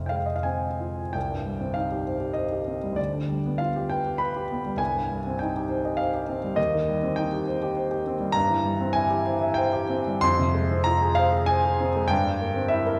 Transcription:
grand piano
Already playing: F2 C3 C4 F5
0.06 F5 G5
0.11 G#3
0.16 F5
0.26 D#5
0.36 F5
0.43 C4 G#5
0.80 F4
1.13 C2 G5
1.31 G2
1.46 G3
1.61 C4
1.74 D#4 F5
1.92 G4
2.06 C5
2.20 G4
2.33 C5 D#5
2.52 G4
2.68 C4
2.83 G3
2.92 D2
2.96 D5
3.13 D3
3.29 G3
3.46 B3
3.58 F4 F5
3.76 G4
3.90 B4 G5
4.07 G4
4.18 B4 B5
4.37 G4
4.52 B3
4.66 G3
4.77 C2 G#5
4.95 G2
5.12 G3
5.27 C4
5.39 D#4 G5
5.56 G4
5.70 C5
5.85 D#5
5.97 C5 F5
6.14 G4
6.29 C4
6.44 G3
6.55 D#2 D#5
6.74 D#3
6.89 G3
7.03 C4
7.16 D#4 G5
7.33 G4
7.47 C5
7.63 G4
7.77 C5
7.91 G4
8.07 C4
8.20 G3
8.32 G2 A#5
8.50 E3
8.65 G3
8.81 C4
8.93 E4 G#5
9.10 G4
9.25 C5
9.41 E5
9.54 C5 G5
9.73 G4
9.90 C4
10.07 G3
10.21 F2 C6
10.39 C3
10.54 G#3
10.71 C4
10.84 F4 A#5
11.01 G#4
11.15 C5 F5
11.33 G#4
11.46 C5 G#5
11.65 G#4
11.80 C4
11.96 G#3
12.08 G2 G5
12.25 G3
12.41 A#3
12.56 C4
12.68 E4 E5
12.86 A#4

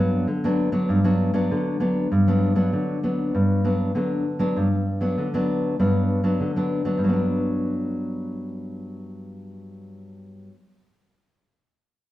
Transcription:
nylon-string guitar
Already playing: G2 F#3 B3 D4
0.27 D3
0.44 F#3 B3 D4
0.72 F#3 B3 D4
0.89 G2
1.04 F#3 B3 D4
1.34 F#3 B3 D4
1.51 D3
1.80 F#3 B3 D4
2.12 G2
2.28 F#3 B3 D4
2.55 F#3 B3 D4
2.73 D3
3.03 F#3 B3 D4
3.35 G2
3.64 F#3 B3 D4
3.95 D3 F#3 B3 D4
4.39 F#3 B3 D4
4.57 G2
5.01 F#3 B3 D4
5.18 D3
5.34 F#3 B3 D4
5.79 G2 F#3 B3 D4
6.24 F#3 B3 D4
6.40 D3
6.56 F#3 B3 D4
6.85 F#3 B3 D4
6.98 G2
7.04 F#3
7.09 B3
7.13 D4

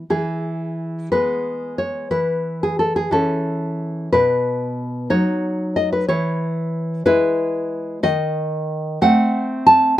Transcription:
nylon-string guitar
0.10 E3 G#4
1.12 G#3 B3 B4
1.78 C#5
2.11 E3 B4
2.63 G#4
2.79 A4
2.96 G#4
3.11 E3 C#4 A4
4.13 B2 B4
5.10 F#3 D#4 C#5
5.76 D#5
5.93 B4
6.08 E3 C#5
7.06 G#3 E4 B4
8.03 D#3 D#5
9.02 A3 C4 F#5
9.67 A5

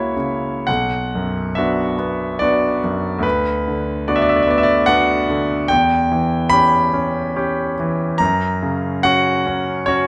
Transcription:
grand piano
Already playing: C#2 C#3 A#3 E4 F#4 C#5 E5
0.16 C#3
0.67 B1 F#5
1.15 F#2
1.55 B3 D4 F#4 E5
1.99 B3
2.39 B3 D4 F#4 D5
2.84 F#2
3.19 D2
3.23 B4
3.68 D3
4.08 B3 D4 F#4 D5
4.16 E5
4.22 D5
4.29 E5
4.36 D5
4.43 E5
4.47 B3 D5
4.58 E5
4.63 D5
4.86 B3 D4 F#4 F#5
5.29 D3
5.68 E2 G5
6.12 E3
6.50 C#4 G4 B5
6.93 C#4
7.36 C#4 G4
7.80 E3
8.18 F#2 A#5
8.63 C#3
9.03 C#4 F#4 F#5
9.47 C#4
9.86 C#4 F#4 C#5

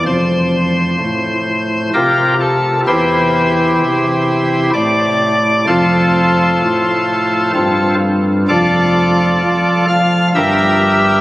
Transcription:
pipe organ
0.05 F1 F2 C5
0.99 A2
1.94 C3 F4 G4 A#4
2.40 A4
2.87 E2 E3 E4 G4 C5
3.81 C3
4.73 A2 D5
5.67 F1 F2 F4 A4 C5
6.60 A2
7.54 G2 C4 F4 A4
8.48 F1 F2 F4 A4 D5
9.41 F3
9.88 F5
10.35 G1 G2 G4 A#4 E5

